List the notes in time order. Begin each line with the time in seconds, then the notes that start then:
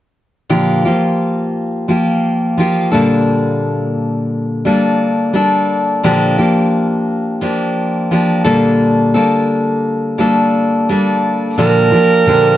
0.49 A#2 D3 F3 A#3 F4 G4
0.85 F3 A#3 F4 G4
1.88 F3 A#3 F4 G4
2.57 F3 A#3 F4 G4
2.92 A#2 D3 G3 A#3 D4 A4
4.65 G3 A#3 D4 A4
5.33 G3 A#3 D4 A4
6.03 A#2 D3 F3 A#3 D4 G4
6.38 F3 A#3 D4 G4
7.41 F3 A#3 D4 G4
8.11 F3 A#3 D4 G4
8.44 A#2 D3 G3 A#3 D4 A4
9.14 G3 A#3 D4 A4
10.18 G3 A#3 D4 A4
10.89 G3 A#3 D4 A4
11.58 A#2 D3 F3 A#3 D4 G4 A#4
11.91 F3 A#3 D4 G4
12.26 A#2 D3 F3 A#3 D4 G4